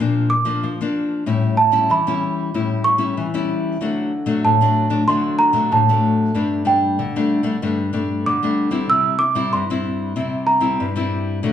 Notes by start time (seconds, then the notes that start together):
Already playing: C6
0.00 A#2 F3 A#3 D4
0.30 D6
0.45 F3 A#3 D4
0.63 F3
0.81 F3 A#3 D4
1.26 A2 G3 C#4 E4
1.57 A5
1.72 G3 C#4 E4
1.90 E3 B5
2.07 G3 C#4 E4
2.54 A2 G3 C#4 E4
2.84 C#6
2.98 G3 C#4 E4
3.17 E3
3.34 G3 C#4 E4
3.81 D3 F#3 A3 D4
4.26 F#3 A3 D4
4.44 A2 A5
4.61 F#3 A3 D4
4.90 F#3 A3 D4
5.08 D3 F#3 A3 D4 C6
5.39 A#5
5.53 F#3 A3 D4
5.72 A2 A5
5.89 F#3 A3 D4
6.34 G2 G3 A3 D4
6.65 G3 A3 D4 G5
6.99 D3
7.16 G3 A3 D4
7.43 G3 A3 D4
7.62 G2 G3 A3 D4
7.93 G3 A3 D4
8.26 D3 D6
8.43 G3 A3 D4
8.71 G3 C4 E4
8.90 C3 E6
9.19 D6
9.35 G3 C4 E4
9.53 G2 C6
9.70 G3 C4 E4
10.16 C3 G3 C4 E4
10.47 A#5
10.60 G3 C4 E4
10.80 G2
10.96 G3 C4 E4
11.43 D3 F#3 A3 D4